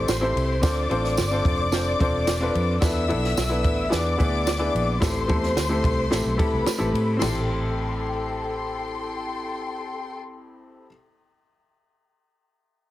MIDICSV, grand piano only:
0, 0, Header, 1, 2, 480
1, 0, Start_track
1, 0, Key_signature, 0, "minor"
1, 0, Tempo, 548948
1, 547, Time_signature, 4, 2, 24, 8
1, 11285, End_track
2, 0, Start_track
2, 0, Title_t, "Grand piano"
2, 0, Program_c, 0, 0
2, 0, Note_on_c, 0, 60, 85
2, 0, Note_on_c, 0, 64, 78
2, 0, Note_on_c, 0, 67, 82
2, 0, Note_on_c, 0, 69, 87
2, 0, Note_on_c, 0, 72, 100
2, 108, Note_off_c, 0, 60, 0
2, 110, Note_off_c, 0, 64, 0
2, 111, Note_off_c, 0, 67, 0
2, 113, Note_off_c, 0, 69, 0
2, 114, Note_off_c, 0, 72, 0
2, 184, Note_on_c, 0, 60, 99
2, 184, Note_on_c, 0, 64, 91
2, 192, Note_on_c, 0, 67, 83
2, 194, Note_on_c, 0, 69, 84
2, 198, Note_on_c, 0, 72, 107
2, 468, Note_off_c, 0, 64, 0
2, 469, Note_off_c, 0, 60, 0
2, 473, Note_off_c, 0, 67, 0
2, 473, Note_off_c, 0, 69, 0
2, 476, Note_off_c, 0, 72, 0
2, 535, Note_on_c, 0, 60, 88
2, 542, Note_on_c, 0, 62, 79
2, 544, Note_on_c, 0, 65, 84
2, 549, Note_on_c, 0, 69, 84
2, 551, Note_on_c, 0, 72, 94
2, 730, Note_off_c, 0, 60, 0
2, 733, Note_off_c, 0, 62, 0
2, 734, Note_off_c, 0, 65, 0
2, 737, Note_off_c, 0, 69, 0
2, 738, Note_off_c, 0, 72, 0
2, 785, Note_on_c, 0, 60, 93
2, 787, Note_on_c, 0, 62, 86
2, 791, Note_on_c, 0, 65, 88
2, 795, Note_on_c, 0, 69, 86
2, 797, Note_on_c, 0, 72, 102
2, 1069, Note_off_c, 0, 60, 0
2, 1070, Note_off_c, 0, 62, 0
2, 1072, Note_off_c, 0, 65, 0
2, 1074, Note_off_c, 0, 69, 0
2, 1075, Note_off_c, 0, 72, 0
2, 1146, Note_on_c, 0, 60, 88
2, 1149, Note_on_c, 0, 62, 88
2, 1152, Note_on_c, 0, 65, 81
2, 1158, Note_on_c, 0, 69, 84
2, 1162, Note_on_c, 0, 72, 96
2, 1430, Note_off_c, 0, 60, 0
2, 1431, Note_off_c, 0, 62, 0
2, 1433, Note_off_c, 0, 65, 0
2, 1436, Note_off_c, 0, 69, 0
2, 1438, Note_off_c, 0, 72, 0
2, 1501, Note_on_c, 0, 60, 86
2, 1507, Note_on_c, 0, 62, 83
2, 1513, Note_on_c, 0, 65, 81
2, 1515, Note_on_c, 0, 69, 77
2, 1516, Note_on_c, 0, 72, 95
2, 1693, Note_off_c, 0, 60, 0
2, 1696, Note_off_c, 0, 62, 0
2, 1699, Note_off_c, 0, 65, 0
2, 1700, Note_off_c, 0, 69, 0
2, 1701, Note_off_c, 0, 72, 0
2, 1743, Note_on_c, 0, 60, 96
2, 1747, Note_on_c, 0, 62, 88
2, 1753, Note_on_c, 0, 65, 83
2, 1756, Note_on_c, 0, 69, 87
2, 1760, Note_on_c, 0, 72, 100
2, 2028, Note_off_c, 0, 60, 0
2, 2030, Note_off_c, 0, 62, 0
2, 2033, Note_off_c, 0, 65, 0
2, 2035, Note_off_c, 0, 69, 0
2, 2037, Note_off_c, 0, 72, 0
2, 2101, Note_on_c, 0, 60, 94
2, 2107, Note_on_c, 0, 62, 85
2, 2110, Note_on_c, 0, 65, 87
2, 2112, Note_on_c, 0, 69, 85
2, 2121, Note_on_c, 0, 71, 105
2, 2387, Note_off_c, 0, 60, 0
2, 2390, Note_off_c, 0, 62, 0
2, 2392, Note_off_c, 0, 65, 0
2, 2393, Note_off_c, 0, 69, 0
2, 2397, Note_off_c, 0, 71, 0
2, 2456, Note_on_c, 0, 59, 92
2, 2461, Note_on_c, 0, 62, 88
2, 2465, Note_on_c, 0, 64, 84
2, 2468, Note_on_c, 0, 69, 85
2, 2474, Note_on_c, 0, 71, 103
2, 2650, Note_off_c, 0, 59, 0
2, 2653, Note_off_c, 0, 62, 0
2, 2655, Note_off_c, 0, 64, 0
2, 2657, Note_off_c, 0, 69, 0
2, 2659, Note_off_c, 0, 71, 0
2, 2693, Note_on_c, 0, 59, 97
2, 2696, Note_on_c, 0, 62, 87
2, 2701, Note_on_c, 0, 64, 87
2, 2707, Note_on_c, 0, 69, 90
2, 2709, Note_on_c, 0, 71, 98
2, 2983, Note_off_c, 0, 59, 0
2, 2985, Note_off_c, 0, 62, 0
2, 2987, Note_off_c, 0, 64, 0
2, 2990, Note_off_c, 0, 69, 0
2, 2991, Note_off_c, 0, 71, 0
2, 3052, Note_on_c, 0, 59, 91
2, 3055, Note_on_c, 0, 62, 83
2, 3055, Note_on_c, 0, 64, 89
2, 3060, Note_on_c, 0, 69, 81
2, 3066, Note_on_c, 0, 71, 106
2, 3343, Note_off_c, 0, 59, 0
2, 3344, Note_off_c, 0, 62, 0
2, 3344, Note_off_c, 0, 64, 0
2, 3347, Note_off_c, 0, 69, 0
2, 3350, Note_off_c, 0, 71, 0
2, 3401, Note_on_c, 0, 59, 94
2, 3408, Note_on_c, 0, 62, 87
2, 3412, Note_on_c, 0, 64, 79
2, 3413, Note_on_c, 0, 68, 80
2, 3418, Note_on_c, 0, 71, 98
2, 3603, Note_off_c, 0, 59, 0
2, 3606, Note_off_c, 0, 62, 0
2, 3608, Note_off_c, 0, 64, 0
2, 3609, Note_off_c, 0, 68, 0
2, 3611, Note_off_c, 0, 71, 0
2, 3646, Note_on_c, 0, 59, 92
2, 3651, Note_on_c, 0, 62, 83
2, 3657, Note_on_c, 0, 64, 89
2, 3660, Note_on_c, 0, 68, 85
2, 3662, Note_on_c, 0, 71, 106
2, 3940, Note_off_c, 0, 59, 0
2, 3942, Note_off_c, 0, 62, 0
2, 3945, Note_off_c, 0, 64, 0
2, 3947, Note_off_c, 0, 68, 0
2, 3948, Note_off_c, 0, 71, 0
2, 4006, Note_on_c, 0, 59, 94
2, 4011, Note_on_c, 0, 62, 94
2, 4016, Note_on_c, 0, 68, 89
2, 4017, Note_on_c, 0, 64, 93
2, 4020, Note_on_c, 0, 71, 108
2, 4300, Note_off_c, 0, 59, 0
2, 4302, Note_off_c, 0, 62, 0
2, 4305, Note_off_c, 0, 64, 0
2, 4305, Note_off_c, 0, 68, 0
2, 4307, Note_off_c, 0, 71, 0
2, 4372, Note_on_c, 0, 57, 87
2, 4374, Note_on_c, 0, 60, 85
2, 4380, Note_on_c, 0, 64, 82
2, 4386, Note_on_c, 0, 67, 79
2, 4387, Note_on_c, 0, 69, 105
2, 4568, Note_off_c, 0, 57, 0
2, 4569, Note_off_c, 0, 60, 0
2, 4572, Note_off_c, 0, 64, 0
2, 4575, Note_off_c, 0, 67, 0
2, 4576, Note_off_c, 0, 69, 0
2, 4609, Note_on_c, 0, 57, 94
2, 4615, Note_on_c, 0, 60, 80
2, 4618, Note_on_c, 0, 64, 80
2, 4620, Note_on_c, 0, 67, 82
2, 4629, Note_on_c, 0, 69, 103
2, 4901, Note_off_c, 0, 57, 0
2, 4904, Note_off_c, 0, 60, 0
2, 4906, Note_off_c, 0, 64, 0
2, 4907, Note_off_c, 0, 67, 0
2, 4912, Note_off_c, 0, 69, 0
2, 4973, Note_on_c, 0, 57, 89
2, 4978, Note_on_c, 0, 60, 80
2, 4979, Note_on_c, 0, 64, 83
2, 4983, Note_on_c, 0, 67, 78
2, 4987, Note_on_c, 0, 69, 96
2, 5263, Note_off_c, 0, 57, 0
2, 5266, Note_off_c, 0, 60, 0
2, 5266, Note_off_c, 0, 64, 0
2, 5269, Note_off_c, 0, 67, 0
2, 5270, Note_off_c, 0, 69, 0
2, 5333, Note_on_c, 0, 57, 90
2, 5338, Note_on_c, 0, 60, 83
2, 5339, Note_on_c, 0, 64, 77
2, 5347, Note_on_c, 0, 67, 79
2, 5349, Note_on_c, 0, 69, 96
2, 5529, Note_off_c, 0, 57, 0
2, 5531, Note_off_c, 0, 60, 0
2, 5532, Note_off_c, 0, 64, 0
2, 5536, Note_off_c, 0, 67, 0
2, 5537, Note_off_c, 0, 69, 0
2, 5565, Note_on_c, 0, 57, 87
2, 5573, Note_on_c, 0, 60, 76
2, 5578, Note_on_c, 0, 64, 83
2, 5580, Note_on_c, 0, 67, 87
2, 5587, Note_on_c, 0, 69, 104
2, 5860, Note_off_c, 0, 57, 0
2, 5863, Note_off_c, 0, 60, 0
2, 5866, Note_off_c, 0, 64, 0
2, 5867, Note_off_c, 0, 67, 0
2, 5871, Note_off_c, 0, 69, 0
2, 5927, Note_on_c, 0, 57, 98
2, 5931, Note_on_c, 0, 60, 81
2, 5932, Note_on_c, 0, 64, 86
2, 5936, Note_on_c, 0, 67, 91
2, 5941, Note_on_c, 0, 69, 97
2, 6220, Note_off_c, 0, 57, 0
2, 6222, Note_off_c, 0, 60, 0
2, 6223, Note_off_c, 0, 64, 0
2, 6225, Note_off_c, 0, 67, 0
2, 6227, Note_off_c, 0, 69, 0
2, 6268, Note_on_c, 0, 60, 85
2, 6286, Note_on_c, 0, 64, 81
2, 6310, Note_on_c, 0, 67, 75
2, 6332, Note_on_c, 0, 69, 97
2, 9485, Note_off_c, 0, 60, 0
2, 9494, Note_off_c, 0, 64, 0
2, 9506, Note_off_c, 0, 67, 0
2, 9517, Note_off_c, 0, 69, 0
2, 11285, End_track
0, 0, End_of_file